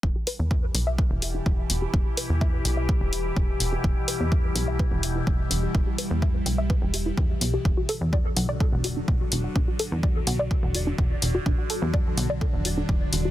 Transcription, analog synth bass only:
X:1
M:4/4
L:1/16
Q:1/4=126
K:Em
V:1 name="Analog synth bass" clef=bass
E,,, z2 E,,3 B,,,3 E,,,3 E,,, z E,,, z | E,,, z2 E,,3 B,,,3 E,,,3 E,,, z E,,, z | E,,, z2 E,,3 B,,,3 E,,,3 E,,, z E,,, z | E,,, z2 E,,3 B,,,3 E,,,3 E,, z B,,, z |
E,,, z2 E,,3 B,,,3 E,,,3 E,,, z E,,, z | E,,, z2 E,,3 B,,,3 E,,,3 E,,, z E,,, z | E,,, z2 E,,3 B,,,3 E,,,3 E,,, z E,,, z |]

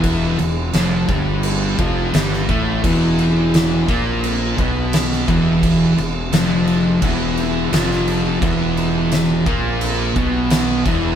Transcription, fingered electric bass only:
X:1
M:4/4
L:1/8
Q:1/4=86
K:Ephr
V:1 name="Fingered electric bass" clef=bass
E,,, E,,, F,,, G,,,2 F,,, G,,, A,,, | E,,,3 ^A,,,2 B,,,2 E,,,- | E,,, E,,, F,,,2 E,,,2 F,,,2 | E,,,3 ^A,,,2 B,,,2 E,,, |]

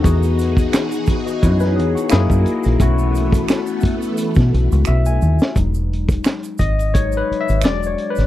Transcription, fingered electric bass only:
X:1
M:4/4
L:1/16
Q:"Swing 16ths" 1/4=87
K:E
V:1 name="Fingered electric bass" clef=bass
E,,4 z4 F,,2 E,, z F,, F,, z ^A,,, | B,,,4 z4 z B,, B,,, C,, B,,,2 D,, z | E,,,4 z2 G,,,4 z G,,, E,,,2 z G,,, |]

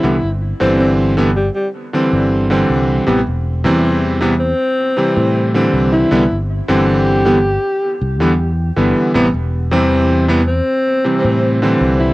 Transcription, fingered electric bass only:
X:1
M:4/4
L:1/16
Q:1/4=79
K:Am
V:1 name="Fingered electric bass" clef=bass
C,, G,,,2 G,,,4- G,,, z3 G,,,3 C,,2 | A,,, E,,,2 E,,4- E,, z3 A,,3 C,,2 | C,, G,,,2 G,,,4- G,,, z2 C,, E,,3 G,,, z | A,,, E,,,2 E,,4- E,, z3 A,,3 C,,2 |]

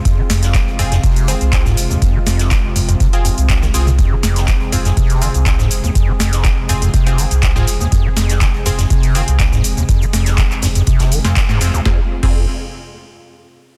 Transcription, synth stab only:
X:1
M:4/4
L:1/16
Q:1/4=122
K:Fm
V:1 name="Synth stab"
z6 [CFA] z3 [CFA] z4 z | z8 z [CFA]2 z3 [CFA] z | z6 [CFA] z3 [CFA] z4 z | z6 [CFA]2 z [CFA]2 z2 [CFA] z2 |
z6 [CFA] z3 [CFA] z4 z | z8 z3 [CFA] z2 [CFA] z | [CFA] z2 [CFA]2 z8 z3 |]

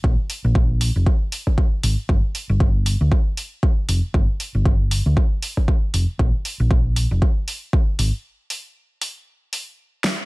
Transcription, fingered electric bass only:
X:1
M:4/4
L:1/16
Q:"Swing 16ths" 1/4=117
K:Bb
V:1 name="Fingered electric bass" clef=bass
B,,, z2 B,,,4 F,,, z6 _A,,, z | G,,, z2 G,,,4 D,, z6 F,,, z | G,,, z2 G,,,4 D,, z6 F,,, z | B,,, z2 B,,,4 F,,, z6 _A,,, z |
z16 |]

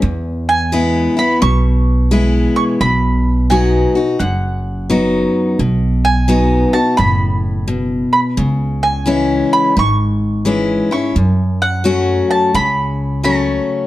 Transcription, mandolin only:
X:1
M:4/4
L:1/8
Q:"Swing" 1/4=86
K:Bmix
V:1 name="Mandolin"
z g2 b c'3 c' | b2 g2 f3 z | z g2 a b3 b | z g2 b c'3 c' |
z f2 a b2 a2 |]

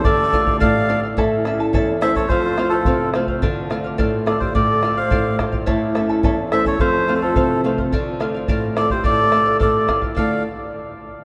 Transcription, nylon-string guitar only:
X:1
M:2/4
L:1/8
Q:1/4=107
K:Dm
V:1 name="Nylon-string guitar"
D, [A,DF] A,, [A,DF] | A,, [A,^CE] E,, [A,CE] | F,, [A,CF] C, [A,CF] | D, [A,DF] A,, [A,DF] |
A,, [A,DF] A,, [A,DF] | A,, [A,^CE] E,, [A,CE] | F,, [A,CF] C, [A,CF] | D, [A,DF] A,, [A,DF] |
A,, [A,DF] A,, [A,DF] | [D,A,DFA] z3 |]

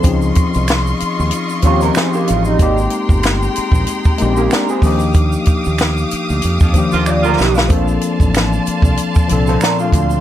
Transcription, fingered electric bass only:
X:1
M:4/4
L:1/16
Q:"Swing 16ths" 1/4=94
K:Bb
V:1 name="Fingered electric bass" clef=bass
_D,,2 z C,,3 z E,, z2 E,,2 z2 A,,,2 | _A,,,2 z G,,,3 z B,,, z2 B,,,2 z2 E,,2- | E,,2 z E,,3 z D,, F,, F,, z E,,2 D,, _C,,2 | B,,,2 z A,,,3 z C,, z2 C,,2 z2 D,,2 |]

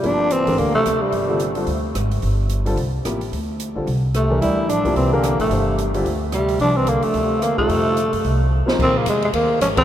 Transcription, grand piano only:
X:1
M:4/4
L:1/8
Q:"Swing" 1/4=219
K:Gdor
V:1 name="Grand piano"
[C,F,B,EG]3 [E,DGAB]3 z2 | z [D,G,CFA] z [D,G,CFA] z4 | z3 [D,G,CFA] z2 [C,F,B,EG] z | z3 [D,G,CFA] z3 [E,DGAB]- |
[E,DGAB]2 z [C,F,B,EG]2 [E,DGAB]3 | [E,DGAc]3 [D,G,CFG] z4 | z6 z [G,C_EFA]- | [G,C_EFA]2 z4 z [F,B,E_Ac]- |
[K:Bbdor] [F,B,EAc]2 z4 z [D,E,A,GB] |]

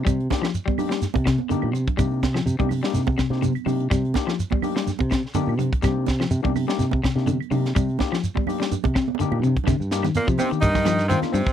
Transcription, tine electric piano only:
X:1
M:4/4
L:1/16
Q:"Swing 16ths" 1/4=125
K:Cm
V:1 name="Tine electric piano"
z2 [B,DEG] z3 [B,DEG]2 z4 [B,DEG] z3 | [B,DEG]2 z3 [B,DEG] z [B,DEG] z3 [B,DEG] z2 [B,DEG] z | z2 [B,DEG] z3 [B,DEG]2 z4 [B,DEG] z3 | [B,DEG]2 z3 [B,DEG] z [B,DEG] z3 [B,DEG] z2 [B,DEG] z |
z2 [B,DEG] z3 [B,DEG]2 z4 [B,DEG] z3 | z2 [B,DEG] z2 [EG] [B,DEG]2 z4 [B,DEF]2 z2 |]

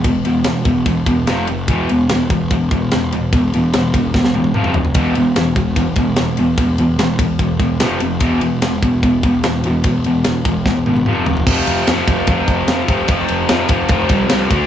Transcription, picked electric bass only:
X:1
M:4/4
L:1/8
Q:1/4=147
K:none
V:1 name="Picked electric bass" clef=bass
E,,, E,,, E,,, E,,, E,,, E,,, F,,, F,,, | E,,, E,,, E,,, E,,, E,,, E,,, E,,, E,,, | E,,, E,,, E,,, E,,, E,,, E,,, F,,, F,,, | E,,, E,,, E,,, E,,, E,,, E,,, E,,, E,,, |
E,,, E,,, E,,, E,,, E,,, E,,, F,,, F,,, | E,,, E,,, E,,, E,,, E,,, E,,, E,,, E,,, | E,,, E,,, E,,, E,,, E,,, ^G,,, F,,, F,,, | F,,, F,,, F,, F,,, F,,, F,,, F,, F,,, |
F,,, F,,, F,, F,,, F,,, C,, C,, D,, |]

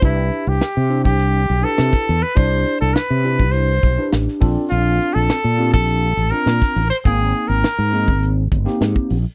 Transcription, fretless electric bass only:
X:1
M:4/4
L:1/16
Q:1/4=102
K:Cmix
V:1 name="Fretless electric bass" clef=bass
C,,2 z C,, z C,2 C,,3 =B,,, z C, z E,, z | C,,2 z C,, z C,2 C,,3 =B,,, z A,,, z _B,,, z | B,,,2 z B,,, z B,,2 B,,,3 A,,, z B,, z A,,, z | _A,,,2 z A,,, z _A,,2 A,,,3 G,,, z A,, z B,,, z |]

